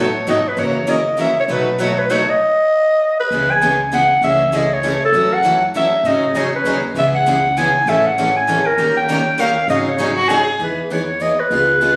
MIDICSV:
0, 0, Header, 1, 6, 480
1, 0, Start_track
1, 0, Tempo, 303797
1, 902, Time_signature, 3, 2, 24, 8
1, 18898, End_track
2, 0, Start_track
2, 0, Title_t, "Clarinet"
2, 0, Program_c, 0, 71
2, 0, Note_on_c, 0, 73, 87
2, 444, Note_off_c, 0, 73, 0
2, 465, Note_on_c, 0, 75, 91
2, 759, Note_on_c, 0, 71, 86
2, 782, Note_off_c, 0, 75, 0
2, 933, Note_on_c, 0, 73, 85
2, 957, Note_off_c, 0, 71, 0
2, 1418, Note_on_c, 0, 75, 88
2, 1442, Note_off_c, 0, 73, 0
2, 1882, Note_off_c, 0, 75, 0
2, 1901, Note_on_c, 0, 76, 91
2, 2149, Note_off_c, 0, 76, 0
2, 2212, Note_on_c, 0, 73, 94
2, 2287, Note_off_c, 0, 73, 0
2, 2389, Note_on_c, 0, 71, 90
2, 2856, Note_on_c, 0, 73, 88
2, 2880, Note_off_c, 0, 71, 0
2, 3137, Note_on_c, 0, 71, 86
2, 3161, Note_off_c, 0, 73, 0
2, 3327, Note_on_c, 0, 73, 90
2, 3351, Note_off_c, 0, 71, 0
2, 3623, Note_on_c, 0, 75, 103
2, 3647, Note_off_c, 0, 73, 0
2, 5045, Note_off_c, 0, 75, 0
2, 5055, Note_on_c, 0, 71, 92
2, 5543, Note_on_c, 0, 80, 95
2, 5567, Note_off_c, 0, 71, 0
2, 6008, Note_off_c, 0, 80, 0
2, 6224, Note_on_c, 0, 78, 98
2, 6655, Note_off_c, 0, 78, 0
2, 6696, Note_on_c, 0, 76, 94
2, 7197, Note_on_c, 0, 75, 96
2, 7221, Note_off_c, 0, 76, 0
2, 7480, Note_on_c, 0, 73, 96
2, 7503, Note_off_c, 0, 75, 0
2, 7937, Note_off_c, 0, 73, 0
2, 7974, Note_on_c, 0, 69, 100
2, 8432, Note_on_c, 0, 78, 100
2, 8456, Note_off_c, 0, 69, 0
2, 8893, Note_off_c, 0, 78, 0
2, 9112, Note_on_c, 0, 76, 99
2, 9581, Note_on_c, 0, 75, 92
2, 9605, Note_off_c, 0, 76, 0
2, 10062, Note_on_c, 0, 73, 84
2, 10086, Note_off_c, 0, 75, 0
2, 10330, Note_off_c, 0, 73, 0
2, 10355, Note_on_c, 0, 71, 85
2, 10781, Note_off_c, 0, 71, 0
2, 11031, Note_on_c, 0, 76, 87
2, 11149, Note_off_c, 0, 76, 0
2, 11293, Note_on_c, 0, 78, 93
2, 11970, Note_on_c, 0, 80, 92
2, 11994, Note_off_c, 0, 78, 0
2, 12466, Note_on_c, 0, 76, 88
2, 12490, Note_off_c, 0, 80, 0
2, 12747, Note_on_c, 0, 78, 86
2, 12770, Note_off_c, 0, 76, 0
2, 13219, Note_on_c, 0, 80, 90
2, 13243, Note_off_c, 0, 78, 0
2, 13686, Note_on_c, 0, 70, 91
2, 13710, Note_off_c, 0, 80, 0
2, 14157, Note_off_c, 0, 70, 0
2, 14166, Note_on_c, 0, 79, 92
2, 14859, Note_on_c, 0, 77, 90
2, 14883, Note_off_c, 0, 79, 0
2, 15310, Note_off_c, 0, 77, 0
2, 15320, Note_on_c, 0, 75, 86
2, 15444, Note_off_c, 0, 75, 0
2, 15614, Note_on_c, 0, 73, 74
2, 16047, Note_off_c, 0, 73, 0
2, 16795, Note_on_c, 0, 71, 75
2, 17264, Note_on_c, 0, 73, 79
2, 17287, Note_off_c, 0, 71, 0
2, 17724, Note_on_c, 0, 75, 85
2, 17748, Note_off_c, 0, 73, 0
2, 18007, Note_on_c, 0, 71, 90
2, 18031, Note_off_c, 0, 75, 0
2, 18898, Note_off_c, 0, 71, 0
2, 18898, End_track
3, 0, Start_track
3, 0, Title_t, "Violin"
3, 0, Program_c, 1, 40
3, 16056, Note_on_c, 1, 66, 90
3, 16244, Note_on_c, 1, 68, 104
3, 16268, Note_off_c, 1, 66, 0
3, 16733, Note_off_c, 1, 68, 0
3, 18898, End_track
4, 0, Start_track
4, 0, Title_t, "Steel-string acoustic guitar"
4, 0, Program_c, 2, 25
4, 429, Note_on_c, 2, 51, 76
4, 437, Note_on_c, 2, 59, 76
4, 448, Note_on_c, 2, 69, 82
4, 594, Note_off_c, 2, 51, 0
4, 598, Note_off_c, 2, 59, 0
4, 604, Note_off_c, 2, 69, 0
4, 892, Note_on_c, 2, 54, 58
4, 915, Note_on_c, 2, 64, 65
4, 918, Note_on_c, 2, 70, 64
4, 1206, Note_off_c, 2, 54, 0
4, 1217, Note_off_c, 2, 64, 0
4, 1218, Note_off_c, 2, 70, 0
4, 1373, Note_on_c, 2, 54, 80
4, 1386, Note_on_c, 2, 64, 89
4, 1396, Note_on_c, 2, 70, 89
4, 1547, Note_off_c, 2, 54, 0
4, 1554, Note_off_c, 2, 64, 0
4, 1559, Note_off_c, 2, 70, 0
4, 1863, Note_on_c, 2, 54, 81
4, 1883, Note_on_c, 2, 64, 82
4, 1891, Note_on_c, 2, 70, 87
4, 2033, Note_off_c, 2, 54, 0
4, 2042, Note_off_c, 2, 64, 0
4, 2047, Note_off_c, 2, 70, 0
4, 2368, Note_on_c, 2, 71, 65
4, 2665, Note_off_c, 2, 71, 0
4, 2844, Note_on_c, 2, 71, 91
4, 3004, Note_off_c, 2, 71, 0
4, 3329, Note_on_c, 2, 71, 86
4, 3487, Note_off_c, 2, 71, 0
4, 5245, Note_on_c, 2, 56, 61
4, 5251, Note_on_c, 2, 64, 65
4, 5545, Note_off_c, 2, 56, 0
4, 5548, Note_off_c, 2, 64, 0
4, 5721, Note_on_c, 2, 56, 86
4, 5730, Note_on_c, 2, 64, 86
4, 5884, Note_off_c, 2, 56, 0
4, 5888, Note_off_c, 2, 64, 0
4, 6200, Note_on_c, 2, 56, 82
4, 6203, Note_on_c, 2, 64, 87
4, 6363, Note_off_c, 2, 56, 0
4, 6365, Note_off_c, 2, 64, 0
4, 6693, Note_on_c, 2, 64, 73
4, 6989, Note_off_c, 2, 64, 0
4, 7159, Note_on_c, 2, 64, 93
4, 7323, Note_off_c, 2, 64, 0
4, 7646, Note_on_c, 2, 64, 88
4, 7806, Note_off_c, 2, 64, 0
4, 8109, Note_on_c, 2, 54, 62
4, 8128, Note_on_c, 2, 64, 73
4, 8134, Note_on_c, 2, 69, 73
4, 8417, Note_off_c, 2, 54, 0
4, 8427, Note_off_c, 2, 64, 0
4, 8430, Note_off_c, 2, 69, 0
4, 8580, Note_on_c, 2, 54, 87
4, 8601, Note_on_c, 2, 64, 84
4, 8603, Note_on_c, 2, 69, 97
4, 8753, Note_off_c, 2, 54, 0
4, 8764, Note_off_c, 2, 64, 0
4, 8765, Note_off_c, 2, 69, 0
4, 9076, Note_on_c, 2, 54, 84
4, 9102, Note_on_c, 2, 64, 101
4, 9107, Note_on_c, 2, 69, 87
4, 9242, Note_off_c, 2, 54, 0
4, 9254, Note_off_c, 2, 64, 0
4, 9257, Note_off_c, 2, 69, 0
4, 11001, Note_on_c, 2, 56, 63
4, 11013, Note_on_c, 2, 64, 72
4, 11303, Note_off_c, 2, 56, 0
4, 11309, Note_off_c, 2, 64, 0
4, 11478, Note_on_c, 2, 56, 83
4, 11495, Note_on_c, 2, 64, 93
4, 11642, Note_off_c, 2, 56, 0
4, 11650, Note_off_c, 2, 64, 0
4, 11972, Note_on_c, 2, 56, 89
4, 11979, Note_on_c, 2, 64, 90
4, 12128, Note_off_c, 2, 56, 0
4, 12132, Note_off_c, 2, 64, 0
4, 12445, Note_on_c, 2, 56, 69
4, 12460, Note_on_c, 2, 64, 66
4, 12462, Note_on_c, 2, 69, 73
4, 12744, Note_off_c, 2, 56, 0
4, 12751, Note_off_c, 2, 64, 0
4, 12753, Note_off_c, 2, 69, 0
4, 12927, Note_on_c, 2, 56, 94
4, 12940, Note_on_c, 2, 64, 94
4, 12944, Note_on_c, 2, 69, 98
4, 13085, Note_off_c, 2, 56, 0
4, 13092, Note_off_c, 2, 64, 0
4, 13094, Note_off_c, 2, 69, 0
4, 13401, Note_on_c, 2, 56, 88
4, 13409, Note_on_c, 2, 64, 87
4, 13421, Note_on_c, 2, 69, 97
4, 13562, Note_off_c, 2, 56, 0
4, 13566, Note_off_c, 2, 64, 0
4, 13572, Note_off_c, 2, 69, 0
4, 18898, End_track
5, 0, Start_track
5, 0, Title_t, "Steel-string acoustic guitar"
5, 0, Program_c, 3, 25
5, 424, Note_on_c, 3, 47, 78
5, 434, Note_on_c, 3, 54, 84
5, 435, Note_on_c, 3, 57, 78
5, 440, Note_on_c, 3, 63, 75
5, 443, Note_on_c, 3, 66, 81
5, 592, Note_off_c, 3, 47, 0
5, 596, Note_off_c, 3, 54, 0
5, 597, Note_off_c, 3, 57, 0
5, 599, Note_off_c, 3, 63, 0
5, 601, Note_off_c, 3, 66, 0
5, 899, Note_on_c, 3, 49, 62
5, 902, Note_on_c, 3, 52, 73
5, 907, Note_on_c, 3, 58, 72
5, 914, Note_on_c, 3, 61, 71
5, 920, Note_on_c, 3, 66, 67
5, 1209, Note_off_c, 3, 49, 0
5, 1210, Note_off_c, 3, 52, 0
5, 1213, Note_off_c, 3, 58, 0
5, 1217, Note_off_c, 3, 61, 0
5, 1220, Note_off_c, 3, 66, 0
5, 1371, Note_on_c, 3, 49, 79
5, 1371, Note_on_c, 3, 52, 84
5, 1379, Note_on_c, 3, 61, 89
5, 1381, Note_on_c, 3, 58, 82
5, 1381, Note_on_c, 3, 66, 81
5, 1546, Note_off_c, 3, 49, 0
5, 1546, Note_off_c, 3, 52, 0
5, 1550, Note_off_c, 3, 61, 0
5, 1551, Note_off_c, 3, 58, 0
5, 1551, Note_off_c, 3, 66, 0
5, 1845, Note_on_c, 3, 49, 69
5, 1846, Note_on_c, 3, 52, 81
5, 1854, Note_on_c, 3, 61, 81
5, 1855, Note_on_c, 3, 58, 84
5, 1863, Note_on_c, 3, 66, 83
5, 2024, Note_off_c, 3, 49, 0
5, 2024, Note_off_c, 3, 52, 0
5, 2028, Note_off_c, 3, 61, 0
5, 2029, Note_off_c, 3, 58, 0
5, 2033, Note_off_c, 3, 66, 0
5, 2342, Note_on_c, 3, 47, 66
5, 2345, Note_on_c, 3, 54, 68
5, 2351, Note_on_c, 3, 63, 70
5, 2355, Note_on_c, 3, 57, 67
5, 2362, Note_on_c, 3, 66, 71
5, 2652, Note_off_c, 3, 47, 0
5, 2653, Note_off_c, 3, 54, 0
5, 2657, Note_off_c, 3, 63, 0
5, 2658, Note_off_c, 3, 57, 0
5, 2662, Note_off_c, 3, 66, 0
5, 2832, Note_on_c, 3, 47, 77
5, 2835, Note_on_c, 3, 54, 79
5, 2842, Note_on_c, 3, 57, 83
5, 2845, Note_on_c, 3, 63, 85
5, 2855, Note_on_c, 3, 66, 92
5, 2998, Note_off_c, 3, 47, 0
5, 3000, Note_off_c, 3, 54, 0
5, 3003, Note_off_c, 3, 57, 0
5, 3005, Note_off_c, 3, 63, 0
5, 3010, Note_off_c, 3, 66, 0
5, 3321, Note_on_c, 3, 47, 76
5, 3326, Note_on_c, 3, 54, 77
5, 3333, Note_on_c, 3, 57, 88
5, 3337, Note_on_c, 3, 63, 85
5, 3342, Note_on_c, 3, 66, 87
5, 3483, Note_off_c, 3, 47, 0
5, 3485, Note_off_c, 3, 54, 0
5, 3489, Note_off_c, 3, 57, 0
5, 3491, Note_off_c, 3, 63, 0
5, 3493, Note_off_c, 3, 66, 0
5, 5247, Note_on_c, 3, 49, 64
5, 5257, Note_on_c, 3, 52, 72
5, 5260, Note_on_c, 3, 59, 70
5, 5261, Note_on_c, 3, 61, 70
5, 5268, Note_on_c, 3, 68, 70
5, 5546, Note_off_c, 3, 49, 0
5, 5551, Note_off_c, 3, 52, 0
5, 5553, Note_off_c, 3, 59, 0
5, 5553, Note_off_c, 3, 61, 0
5, 5557, Note_off_c, 3, 68, 0
5, 5716, Note_on_c, 3, 49, 77
5, 5731, Note_on_c, 3, 52, 85
5, 5731, Note_on_c, 3, 59, 78
5, 5734, Note_on_c, 3, 61, 88
5, 5734, Note_on_c, 3, 68, 93
5, 5882, Note_off_c, 3, 49, 0
5, 5889, Note_off_c, 3, 52, 0
5, 5889, Note_off_c, 3, 59, 0
5, 5891, Note_off_c, 3, 61, 0
5, 5891, Note_off_c, 3, 68, 0
5, 6203, Note_on_c, 3, 49, 73
5, 6208, Note_on_c, 3, 52, 87
5, 6213, Note_on_c, 3, 59, 83
5, 6217, Note_on_c, 3, 61, 86
5, 6225, Note_on_c, 3, 68, 89
5, 6365, Note_off_c, 3, 49, 0
5, 6368, Note_off_c, 3, 52, 0
5, 6370, Note_off_c, 3, 59, 0
5, 6372, Note_off_c, 3, 61, 0
5, 6376, Note_off_c, 3, 68, 0
5, 6680, Note_on_c, 3, 49, 66
5, 6681, Note_on_c, 3, 52, 71
5, 6686, Note_on_c, 3, 57, 73
5, 6694, Note_on_c, 3, 61, 75
5, 6695, Note_on_c, 3, 68, 75
5, 6983, Note_off_c, 3, 49, 0
5, 6983, Note_off_c, 3, 52, 0
5, 6986, Note_off_c, 3, 57, 0
5, 6990, Note_off_c, 3, 61, 0
5, 6990, Note_off_c, 3, 68, 0
5, 7147, Note_on_c, 3, 49, 82
5, 7157, Note_on_c, 3, 52, 93
5, 7160, Note_on_c, 3, 57, 90
5, 7163, Note_on_c, 3, 68, 95
5, 7171, Note_on_c, 3, 61, 89
5, 7317, Note_off_c, 3, 49, 0
5, 7322, Note_off_c, 3, 52, 0
5, 7323, Note_off_c, 3, 57, 0
5, 7325, Note_off_c, 3, 68, 0
5, 7329, Note_off_c, 3, 61, 0
5, 7640, Note_on_c, 3, 49, 77
5, 7640, Note_on_c, 3, 52, 78
5, 7645, Note_on_c, 3, 57, 89
5, 7648, Note_on_c, 3, 68, 92
5, 7652, Note_on_c, 3, 61, 88
5, 7804, Note_off_c, 3, 49, 0
5, 7804, Note_off_c, 3, 52, 0
5, 7806, Note_off_c, 3, 57, 0
5, 7808, Note_off_c, 3, 68, 0
5, 7809, Note_off_c, 3, 61, 0
5, 8116, Note_on_c, 3, 49, 72
5, 8121, Note_on_c, 3, 52, 69
5, 8128, Note_on_c, 3, 57, 74
5, 8130, Note_on_c, 3, 61, 74
5, 8138, Note_on_c, 3, 66, 79
5, 8421, Note_off_c, 3, 49, 0
5, 8423, Note_off_c, 3, 52, 0
5, 8426, Note_off_c, 3, 57, 0
5, 8428, Note_off_c, 3, 61, 0
5, 8432, Note_off_c, 3, 66, 0
5, 8603, Note_on_c, 3, 49, 84
5, 8607, Note_on_c, 3, 52, 98
5, 8611, Note_on_c, 3, 57, 92
5, 8617, Note_on_c, 3, 61, 92
5, 8617, Note_on_c, 3, 66, 106
5, 8765, Note_off_c, 3, 49, 0
5, 8767, Note_off_c, 3, 52, 0
5, 8769, Note_off_c, 3, 57, 0
5, 8772, Note_off_c, 3, 61, 0
5, 8772, Note_off_c, 3, 66, 0
5, 9071, Note_on_c, 3, 49, 86
5, 9075, Note_on_c, 3, 52, 77
5, 9081, Note_on_c, 3, 57, 90
5, 9083, Note_on_c, 3, 61, 85
5, 9091, Note_on_c, 3, 66, 92
5, 9239, Note_off_c, 3, 49, 0
5, 9241, Note_off_c, 3, 52, 0
5, 9244, Note_off_c, 3, 57, 0
5, 9245, Note_off_c, 3, 61, 0
5, 9249, Note_off_c, 3, 66, 0
5, 9555, Note_on_c, 3, 49, 74
5, 9564, Note_on_c, 3, 54, 69
5, 9565, Note_on_c, 3, 61, 70
5, 9570, Note_on_c, 3, 68, 74
5, 9577, Note_on_c, 3, 63, 75
5, 9860, Note_off_c, 3, 49, 0
5, 9864, Note_off_c, 3, 54, 0
5, 9865, Note_off_c, 3, 61, 0
5, 9868, Note_off_c, 3, 68, 0
5, 9871, Note_off_c, 3, 63, 0
5, 10026, Note_on_c, 3, 49, 91
5, 10034, Note_on_c, 3, 54, 89
5, 10037, Note_on_c, 3, 61, 88
5, 10041, Note_on_c, 3, 63, 95
5, 10044, Note_on_c, 3, 68, 94
5, 10196, Note_off_c, 3, 49, 0
5, 10200, Note_off_c, 3, 54, 0
5, 10202, Note_off_c, 3, 61, 0
5, 10204, Note_off_c, 3, 63, 0
5, 10205, Note_off_c, 3, 68, 0
5, 10506, Note_on_c, 3, 49, 77
5, 10510, Note_on_c, 3, 54, 82
5, 10514, Note_on_c, 3, 61, 85
5, 10519, Note_on_c, 3, 63, 84
5, 10522, Note_on_c, 3, 68, 91
5, 10676, Note_off_c, 3, 49, 0
5, 10678, Note_off_c, 3, 54, 0
5, 10680, Note_off_c, 3, 61, 0
5, 10683, Note_off_c, 3, 63, 0
5, 10684, Note_off_c, 3, 68, 0
5, 10985, Note_on_c, 3, 49, 67
5, 10985, Note_on_c, 3, 52, 66
5, 10995, Note_on_c, 3, 61, 74
5, 10997, Note_on_c, 3, 59, 69
5, 11008, Note_on_c, 3, 68, 72
5, 11294, Note_off_c, 3, 49, 0
5, 11294, Note_off_c, 3, 52, 0
5, 11300, Note_off_c, 3, 59, 0
5, 11300, Note_off_c, 3, 61, 0
5, 11306, Note_off_c, 3, 68, 0
5, 11473, Note_on_c, 3, 49, 93
5, 11481, Note_on_c, 3, 52, 78
5, 11483, Note_on_c, 3, 59, 85
5, 11489, Note_on_c, 3, 61, 89
5, 11497, Note_on_c, 3, 68, 91
5, 11639, Note_off_c, 3, 49, 0
5, 11643, Note_off_c, 3, 52, 0
5, 11644, Note_off_c, 3, 59, 0
5, 11647, Note_off_c, 3, 61, 0
5, 11651, Note_off_c, 3, 68, 0
5, 11954, Note_on_c, 3, 49, 81
5, 11959, Note_on_c, 3, 52, 91
5, 11967, Note_on_c, 3, 61, 93
5, 11969, Note_on_c, 3, 59, 77
5, 11969, Note_on_c, 3, 68, 94
5, 12119, Note_off_c, 3, 49, 0
5, 12122, Note_off_c, 3, 52, 0
5, 12126, Note_off_c, 3, 61, 0
5, 12127, Note_off_c, 3, 59, 0
5, 12127, Note_off_c, 3, 68, 0
5, 12429, Note_on_c, 3, 49, 65
5, 12436, Note_on_c, 3, 52, 68
5, 12440, Note_on_c, 3, 57, 68
5, 12449, Note_on_c, 3, 61, 68
5, 12452, Note_on_c, 3, 68, 67
5, 12736, Note_off_c, 3, 49, 0
5, 12740, Note_off_c, 3, 52, 0
5, 12741, Note_off_c, 3, 57, 0
5, 12746, Note_off_c, 3, 61, 0
5, 12747, Note_off_c, 3, 68, 0
5, 12926, Note_on_c, 3, 49, 89
5, 12934, Note_on_c, 3, 52, 81
5, 12937, Note_on_c, 3, 57, 87
5, 12943, Note_on_c, 3, 61, 91
5, 12949, Note_on_c, 3, 68, 98
5, 13085, Note_off_c, 3, 49, 0
5, 13089, Note_off_c, 3, 52, 0
5, 13090, Note_off_c, 3, 57, 0
5, 13094, Note_off_c, 3, 61, 0
5, 13096, Note_off_c, 3, 68, 0
5, 13397, Note_on_c, 3, 49, 81
5, 13403, Note_on_c, 3, 52, 87
5, 13407, Note_on_c, 3, 57, 87
5, 13413, Note_on_c, 3, 68, 93
5, 13415, Note_on_c, 3, 61, 96
5, 13560, Note_off_c, 3, 49, 0
5, 13563, Note_off_c, 3, 52, 0
5, 13565, Note_off_c, 3, 57, 0
5, 13568, Note_off_c, 3, 68, 0
5, 13569, Note_off_c, 3, 61, 0
5, 13877, Note_on_c, 3, 51, 68
5, 13879, Note_on_c, 3, 58, 74
5, 13887, Note_on_c, 3, 61, 72
5, 13894, Note_on_c, 3, 67, 74
5, 13896, Note_on_c, 3, 70, 80
5, 14179, Note_off_c, 3, 51, 0
5, 14180, Note_off_c, 3, 58, 0
5, 14184, Note_off_c, 3, 61, 0
5, 14187, Note_off_c, 3, 67, 0
5, 14188, Note_off_c, 3, 70, 0
5, 14355, Note_on_c, 3, 51, 85
5, 14361, Note_on_c, 3, 58, 92
5, 14365, Note_on_c, 3, 67, 87
5, 14367, Note_on_c, 3, 61, 98
5, 14375, Note_on_c, 3, 70, 105
5, 14519, Note_off_c, 3, 51, 0
5, 14522, Note_off_c, 3, 58, 0
5, 14524, Note_off_c, 3, 61, 0
5, 14524, Note_off_c, 3, 67, 0
5, 14528, Note_off_c, 3, 70, 0
5, 14826, Note_on_c, 3, 51, 80
5, 14837, Note_on_c, 3, 58, 82
5, 14842, Note_on_c, 3, 61, 90
5, 14848, Note_on_c, 3, 67, 86
5, 14851, Note_on_c, 3, 70, 102
5, 14994, Note_off_c, 3, 51, 0
5, 14999, Note_off_c, 3, 58, 0
5, 15002, Note_off_c, 3, 61, 0
5, 15005, Note_off_c, 3, 67, 0
5, 15006, Note_off_c, 3, 70, 0
5, 15329, Note_on_c, 3, 54, 76
5, 15330, Note_on_c, 3, 49, 72
5, 15339, Note_on_c, 3, 61, 66
5, 15339, Note_on_c, 3, 63, 74
5, 15346, Note_on_c, 3, 68, 83
5, 15624, Note_off_c, 3, 49, 0
5, 15624, Note_off_c, 3, 54, 0
5, 15629, Note_off_c, 3, 61, 0
5, 15629, Note_off_c, 3, 63, 0
5, 15632, Note_off_c, 3, 68, 0
5, 15772, Note_on_c, 3, 49, 88
5, 15782, Note_on_c, 3, 54, 92
5, 15790, Note_on_c, 3, 61, 92
5, 15795, Note_on_c, 3, 63, 89
5, 15798, Note_on_c, 3, 68, 93
5, 15946, Note_off_c, 3, 49, 0
5, 15951, Note_off_c, 3, 54, 0
5, 15955, Note_off_c, 3, 61, 0
5, 15958, Note_off_c, 3, 63, 0
5, 15959, Note_off_c, 3, 68, 0
5, 16276, Note_on_c, 3, 54, 84
5, 16279, Note_on_c, 3, 49, 80
5, 16280, Note_on_c, 3, 61, 78
5, 16291, Note_on_c, 3, 63, 82
5, 16295, Note_on_c, 3, 68, 93
5, 16438, Note_off_c, 3, 54, 0
5, 16439, Note_off_c, 3, 49, 0
5, 16440, Note_off_c, 3, 61, 0
5, 16446, Note_off_c, 3, 63, 0
5, 16447, Note_off_c, 3, 68, 0
5, 16739, Note_on_c, 3, 52, 62
5, 16743, Note_on_c, 3, 59, 66
5, 16758, Note_on_c, 3, 63, 64
5, 16760, Note_on_c, 3, 68, 62
5, 17048, Note_off_c, 3, 52, 0
5, 17050, Note_off_c, 3, 59, 0
5, 17058, Note_off_c, 3, 63, 0
5, 17059, Note_off_c, 3, 68, 0
5, 17227, Note_on_c, 3, 52, 81
5, 17237, Note_on_c, 3, 59, 84
5, 17237, Note_on_c, 3, 63, 87
5, 17245, Note_on_c, 3, 68, 84
5, 17393, Note_off_c, 3, 52, 0
5, 17398, Note_off_c, 3, 59, 0
5, 17398, Note_off_c, 3, 63, 0
5, 17402, Note_off_c, 3, 68, 0
5, 17692, Note_on_c, 3, 52, 74
5, 17705, Note_on_c, 3, 59, 77
5, 17710, Note_on_c, 3, 63, 82
5, 17718, Note_on_c, 3, 68, 83
5, 17866, Note_off_c, 3, 52, 0
5, 17872, Note_off_c, 3, 59, 0
5, 17875, Note_off_c, 3, 63, 0
5, 17879, Note_off_c, 3, 68, 0
5, 18181, Note_on_c, 3, 49, 59
5, 18187, Note_on_c, 3, 56, 61
5, 18193, Note_on_c, 3, 59, 68
5, 18195, Note_on_c, 3, 65, 72
5, 18201, Note_on_c, 3, 68, 71
5, 18489, Note_off_c, 3, 49, 0
5, 18492, Note_off_c, 3, 56, 0
5, 18495, Note_off_c, 3, 59, 0
5, 18496, Note_off_c, 3, 65, 0
5, 18499, Note_off_c, 3, 68, 0
5, 18660, Note_on_c, 3, 49, 81
5, 18664, Note_on_c, 3, 56, 85
5, 18669, Note_on_c, 3, 65, 89
5, 18673, Note_on_c, 3, 59, 86
5, 18676, Note_on_c, 3, 68, 90
5, 18829, Note_off_c, 3, 49, 0
5, 18832, Note_off_c, 3, 56, 0
5, 18834, Note_off_c, 3, 65, 0
5, 18836, Note_off_c, 3, 59, 0
5, 18837, Note_off_c, 3, 68, 0
5, 18898, End_track
6, 0, Start_track
6, 0, Title_t, "Upright bass"
6, 0, Program_c, 4, 32
6, 0, Note_on_c, 4, 33, 73
6, 346, Note_off_c, 4, 33, 0
6, 427, Note_on_c, 4, 32, 82
6, 833, Note_off_c, 4, 32, 0
6, 897, Note_on_c, 4, 30, 78
6, 2054, Note_off_c, 4, 30, 0
6, 2340, Note_on_c, 4, 35, 79
6, 3496, Note_off_c, 4, 35, 0
6, 5222, Note_on_c, 4, 37, 83
6, 6378, Note_off_c, 4, 37, 0
6, 6658, Note_on_c, 4, 37, 85
6, 7815, Note_off_c, 4, 37, 0
6, 8096, Note_on_c, 4, 42, 81
6, 9253, Note_off_c, 4, 42, 0
6, 9534, Note_on_c, 4, 44, 82
6, 9924, Note_off_c, 4, 44, 0
6, 10010, Note_on_c, 4, 40, 74
6, 10426, Note_off_c, 4, 40, 0
6, 10491, Note_on_c, 4, 39, 82
6, 10906, Note_off_c, 4, 39, 0
6, 10973, Note_on_c, 4, 37, 82
6, 12131, Note_off_c, 4, 37, 0
6, 12417, Note_on_c, 4, 33, 84
6, 13572, Note_off_c, 4, 33, 0
6, 13865, Note_on_c, 4, 39, 84
6, 15016, Note_off_c, 4, 39, 0
6, 15292, Note_on_c, 4, 32, 85
6, 16447, Note_off_c, 4, 32, 0
6, 16736, Note_on_c, 4, 40, 75
6, 17890, Note_off_c, 4, 40, 0
6, 18177, Note_on_c, 4, 37, 76
6, 18898, Note_off_c, 4, 37, 0
6, 18898, End_track
0, 0, End_of_file